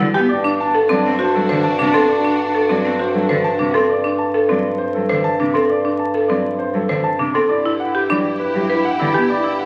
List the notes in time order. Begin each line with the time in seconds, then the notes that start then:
Already playing: G2
0.00 D3 E4
0.14 B3 G4 G5
0.29 G2 D4 F#4 D5
0.44 D4
0.60 D4 A5
0.74 A4
0.89 F#3 C4 D4 D5
1.05 C4
1.19 F#4 C5
1.23 D4
1.35 F#3 A4
1.49 D3 C5
1.55 D4
1.64 A5
1.79 C3 D4
1.86 D4
1.94 C4 A4 C6
2.09 D5
2.17 D4
2.24 D4
2.39 A5
2.48 D4
2.55 A4
2.69 F#3 C4 D5
2.80 D4
2.85 C4
2.99 F#4 C5
3.12 F#3 D4 A4
3.29 D3 C5
3.44 D4 A5
3.59 C3 D4
3.74 C4 A4 C6
3.89 D5
4.04 D4
4.18 A5
4.34 A4
4.49 F#3 C4 D5
4.78 C5
4.94 F#3 A4
5.09 D3 C5
5.24 A5
5.40 C3 D4
5.54 C4 A4 C6
5.69 D5
5.85 D4
5.99 A5
6.14 A4
6.28 F#3 C4 D5
6.59 C5
6.74 F#3 A4
6.89 D3 C5
7.04 A5
7.19 C3 D4
7.34 C4 A4 C6
7.49 G2 E4 G4 D5
7.65 E4
7.80 E4 F#5
7.95 G4
8.09 F#3 D4 E4 D5
8.40 E4 B4
8.55 F#3 G4
8.70 B4
8.74 E4
8.85 F#5
9.00 D3 E4
9.07 E4
9.14 B3 G4 G5
9.30 D5
9.38 E4
9.44 E4
9.59 F#5